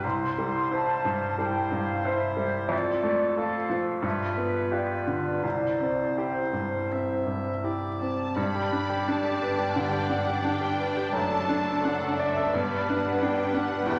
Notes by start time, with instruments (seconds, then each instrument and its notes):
0.02 grand piano C2, clarinet E4, oboe C5, flute section C6
0.38 grand piano G3
0.71 grand piano E4 C5, flute section A5
1.05 grand piano G2
1.39 grand piano G3, clarinet E4, oboe C5, flute section G5
1.72 grand piano G2, flute section F5
2.05 grand piano E4 C5, clarinet E4, oboe C5, flute section E5
2.37 grand piano G3
2.69 grand piano F2, clarinet F4, oboe A4
2.74 flute section D5
3.03 grand piano A3
3.37 clarinet F4, grand piano F4 A4, oboe A4, flute section F5
3.69 grand piano F3
4.02 grand piano G2, clarinet F4, oboe B4, flute section E5
4.37 grand piano B3
4.72 grand piano F4 G4, clarinet F4, oboe B4, flute section D5
5.07 grand piano D3
5.43 grand piano C2, clarinet E4, oboe C5, flute section D5
5.81 grand piano C4
6.17 grand piano E4 G4, clarinet E4, oboe C5, flute section C5
6.53 grand piano G2
6.92 grand piano C4, oboe E5
7.27 grand piano G2
7.64 grand piano E4 G4, oboe D5
8.01 grand piano C4, violin section A5
8.36 double bass section G1, grand piano G2, cello section G2, viola section G3 D4, french horn section G3 D4, violin section D4 D5 B5
8.55 grand piano G4
8.72 grand piano D4
8.89 grand piano G4
9.07 grand piano D4, violin section A5
9.25 grand piano G4
9.42 grand piano B4
9.58 grand piano G4
9.76 grand piano D3, french horn section G3 D4, violin section G5
9.93 grand piano G4
10.10 grand piano D4, violin section F#5
10.27 grand piano G4
10.44 grand piano D4, violin section G5
10.61 grand piano G4
10.78 grand piano B4
10.97 grand piano G4
11.13 double bass section F#1, grand piano F#2, cello section F#2, viola section A3, french horn section A3 D4, violin section A4 A5
11.31 grand piano A4
11.49 grand piano D4
11.67 grand piano A4
11.85 grand piano D4, violin section F#5
12.01 grand piano A4
12.20 grand piano D5, violin section E5
12.37 grand piano A4
12.53 double bass section G1, cello section G2, grand piano G2, viola section G3 B3, french horn section B3 D4, violin section B4 D5
12.71 grand piano B4
12.88 grand piano D4, violin section F#5
13.05 grand piano B4
13.21 grand piano D4, violin section G5
13.38 grand piano B4
13.54 grand piano D4, violin section F#5
13.70 grand piano B4
13.86 double bass section E1, grand piano E2, cello section E2, french horn section B3 E4, violin section E4 G5